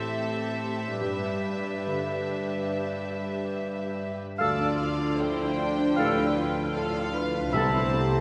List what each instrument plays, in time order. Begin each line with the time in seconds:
Already playing: cello section A2, felt piano A2 E3, viola section C4 G4, violin section A4 E5
1.00 cello section G2, felt piano G2, viola section D4, violin section B4
1.87 felt piano D3
4.38 double bass section D2, felt piano D2, cello section D3, french horn section F3 D4, viola section F4, clarinet A4, violin section D5 A5, oboe F5, flute section E6
4.61 felt piano D4
4.80 felt piano F4, violin section F5
5.00 felt piano D4
5.18 viola section E4, felt piano A4, violin section C5 G5
5.39 felt piano D4
5.59 viola section D4, felt piano F4
5.79 felt piano D4
5.97 felt piano A2, viola section G4, clarinet A4, violin section B4, oboe F5, flute section E6
6.17 felt piano D4
6.37 viola section F4, felt piano F4
6.58 felt piano D4
6.74 felt piano A4, violin section A4 F5
6.98 felt piano D4
7.13 violin section B4
7.17 felt piano F4
7.35 felt piano D4
7.52 felt piano C2, double bass section C2, timpani C3, cello section C3, french horn section A3 B3, viola section E4, violin section C5 A5, oboe E5, flute section B5
7.56 clarinet A4
7.74 felt piano E4
7.92 viola section G4, felt piano A4
8.12 felt piano E4